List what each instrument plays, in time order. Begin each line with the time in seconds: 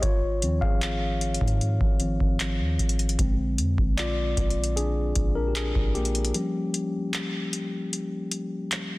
0.02 808-style bass G#1, tine electric piano F4 C#5, kick, closed hi-hat
0.42 808-style bass D#2, tine electric piano D#3 F3 C4, closed hi-hat
0.61 808-style bass G#1, tine electric piano G#4 F5, kick
0.82 clap, closed hi-hat
1.21 closed hi-hat
1.34 closed hi-hat
1.41 808-style bass G#2, kick
1.48 closed hi-hat
1.61 closed hi-hat
1.81 808-style bass G#1, kick
2.00 tine electric piano D#3 F3 C4, closed hi-hat
2.20 808-style bass G#1, kick
2.40 clap, closed hi-hat
2.60 808-style bass D#2
2.79 808-style bass G#1, closed hi-hat
2.89 closed hi-hat
2.99 closed hi-hat
3.09 closed hi-hat
3.19 808-style bass A#1, tine electric piano D3 G#3 C4, kick, closed hi-hat
3.58 808-style bass F2, closed hi-hat
3.78 808-style bass A#1, kick
3.97 tine electric piano F4 D5, clap, closed hi-hat
4.37 808-style bass A#1, kick, closed hi-hat
4.50 closed hi-hat
4.64 closed hi-hat
4.76 tine electric piano D4 G#4, closed hi-hat
5.15 808-style bass A#1, kick, closed hi-hat
5.35 tine electric piano D4 A#4
5.48 tine electric piano G4
5.55 tine electric piano D4 G#4, clap, closed hi-hat
5.75 808-style bass A#1, kick
5.95 tine electric piano A#3 G4, closed hi-hat
6.05 closed hi-hat
6.15 closed hi-hat
6.25 closed hi-hat
6.34 tine electric piano F3 G3 C#4, closed hi-hat
6.74 closed hi-hat
7.13 clap, closed hi-hat
7.53 closed hi-hat
7.93 closed hi-hat
8.31 closed hi-hat
8.72 clap, closed hi-hat